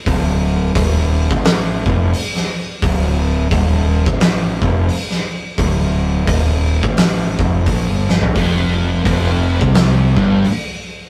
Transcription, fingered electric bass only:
X:1
M:4/4
L:1/16
Q:"Swing" 1/4=87
K:Dm
V:1 name="Fingered electric bass" clef=bass
D,,,4 _E,,,3 A,,,3 F,,,2 z4 | D,,,4 _E,,,3 A,,,3 F,,,2 z4 | D,,,4 _E,,,3 A,,,3 F,,,2 B,,, G,,,2 B,,, | F,,,4 F,,,3 C,,3 G,,,2 z4 |]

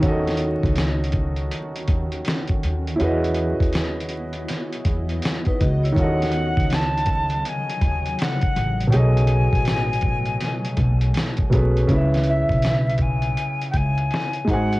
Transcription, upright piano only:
X:1
M:4/4
L:1/8
Q:"Swing 16ths" 1/4=81
K:C#m
V:1 name="Upright piano"
[D,CFAd]8 | [CEFGBd]8 | [D,C^EFAd]8 | [B,,F,CGAd]6- [B,,F,CGAd] [B,,F,CGAB] |
[C,CEBe]6- [C,CEBe] [G,DF^Bg] |]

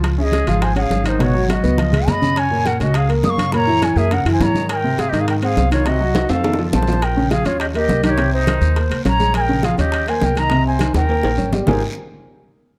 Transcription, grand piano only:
X:1
M:4/4
L:1/8
Q:1/4=206
K:Ab
V:1 name="Grand piano"
[F,F] [D,D]2 [F,F]2 [Dd]2 [E,E] | [_C,_C] [_G,_G]2 [C_c] [F,F] [A,A]2 [D,D]- | [D,D] [B,,B,]2 [D,D]2 [B,B]2 [D,D] | [B,,B,] [_F,_F]2 [B,B] [D,D] [F,F]2 [E,E]- |
[E,E] [C,C]2 [E,E]2 [Cc]2 [E,E] | [C,C] [_G,_G]2 [Cc] [E,E] [F,F]2 [F,F] | z [D,D] [F,F] [Dd]2 [B,B]2 [E,E] | [C,C]2 [E,E]2 [B,B]2 [Dd] [A,A]- |
[A,A] [D,D] [F,F] [Dd]2 [B,B]2 [E,E] | [C,C]2 [E,E]2 [B,B]2 [Dd] [G,G] | [A,EFGAB] z6 z |]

